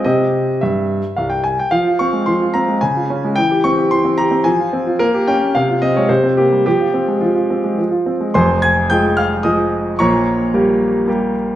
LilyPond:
<<
  \new Staff \with { instrumentName = "Grand piano" } { \time 3/4 \key f \minor \tempo 4 = 109 ees''4 e''4 f''16 g''16 aes''16 g''16 | f''8 des'''8 c'''8 bes''8 aes''4 | g''8 des'''8 c'''8 bes''8 aes''4 | bes'8 g''8 f''8 ees''16 des''16 c''8 g'8 |
g'4 f'4 r4 | <c'' aes'' c'''>8 <aes'' aes'''>8 <g'' g'''>8 <f'' f'''>8 <ees'' ees'''>4 | <des'' bes'' des'''>2~ <des'' bes'' des'''>8 r8 | }
  \new Staff \with { instrumentName = "Grand piano" } { \time 3/4 \key f \minor <c c' g'>4 g,4 c,4 | f16 f'16 c'16 aes16 f16 f'16 c'16 aes16 des16 f'16 des'16 aes16 | e16 g'16 c'16 g'16 e16 c'16 g'16 c'16 f16 f'16 c'16 f'16 | bes16 g'16 des'16 bes16 c16 f'16 c'16 aes16 c16 c'16 bes16 g16 |
f16 f'16 c'16 aes16 f16 f'16 c'16 aes16 f16 f'16 c'16 aes16 | <f,, f,>4 <f aes aes'>4 <f aes aes'>4 | <bes,, bes,>4 <g bes g'>4 <g bes g'>4 | }
>>